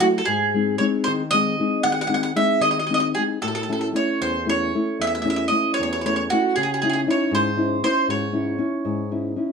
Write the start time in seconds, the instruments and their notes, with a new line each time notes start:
0.00 nylon-string guitar F#3 A3 E4, mandolin F#4
0.18 mandolin A4
0.25 nylon-string guitar G#2, mandolin G#4
0.54 nylon-string guitar G#3 C4 D#4
0.78 nylon-string guitar G#3 C4 D#4, mandolin C#5
1.04 nylon-string guitar D#3, mandolin C5
1.31 nylon-string guitar G#3 C4 D#4, mandolin D#5
1.59 nylon-string guitar G#3 C4 D#4
1.83 nylon-string guitar D#3, mandolin F#5
1.92 mandolin F#5
2.01 mandolin F#5
2.07 nylon-string guitar G#3 C4 D#4, mandolin F#5
2.14 mandolin F#5
2.23 mandolin F#5
2.36 nylon-string guitar G#3 C4 D#4, mandolin E5
2.61 nylon-string guitar D#3, mandolin D#5
2.71 mandolin D#5
2.79 mandolin D#5
2.87 nylon-string guitar G#3 C4, mandolin D#5
2.91 nylon-string guitar D#4, mandolin D#5
3.00 mandolin D#5
3.15 nylon-string guitar G#3 C4 D#4, mandolin G#4
3.42 nylon-string guitar A2, mandolin A4
3.48 mandolin A4
3.55 mandolin A4
3.63 mandolin A4
3.69 nylon-string guitar A3 C#4 E4, mandolin A4
3.81 mandolin A4
3.93 nylon-string guitar A3 C#4 E4, mandolin C#5
4.21 nylon-string guitar E2, mandolin C5
4.46 nylon-string guitar A3 C#4 E4, mandolin C#5
4.75 nylon-string guitar A3 C#4 E4
4.99 nylon-string guitar E2, mandolin E5
5.07 mandolin E5
5.15 mandolin E5
5.22 nylon-string guitar A3 C#4, mandolin E5
5.26 nylon-string guitar E4
5.30 mandolin E5
5.36 mandolin E5
5.48 nylon-string guitar A3 C#4, mandolin D#5
5.52 nylon-string guitar E4
5.74 mandolin C#5
5.79 nylon-string guitar E2, mandolin C#5
5.93 mandolin C#5
6.01 nylon-string guitar A3, mandolin C#5
6.06 nylon-string guitar C#4 E4, mandolin C#5
6.16 mandolin C#5
6.30 nylon-string guitar A3 C#4 E4, mandolin F#4
6.56 nylon-string guitar C#3, mandolin G#4
6.63 mandolin G#4
6.74 mandolin G#4
6.82 nylon-string guitar C#4 D#4 E4, mandolin G#4
6.89 mandolin G#4
7.07 nylon-string guitar C#4 D#4 E4, mandolin C#5
7.31 nylon-string guitar G#2, mandolin C5
7.57 nylon-string guitar C#4 D#4 E4
7.83 nylon-string guitar C#4 D#4 E4, mandolin C5
8.08 nylon-string guitar G#2, mandolin C#5
8.33 nylon-string guitar C#4 D#4 E4
8.58 nylon-string guitar C#4 D#4 E4
8.85 nylon-string guitar G#2
9.11 nylon-string guitar C#4 D#4 E4
9.36 nylon-string guitar C#4 D#4 E4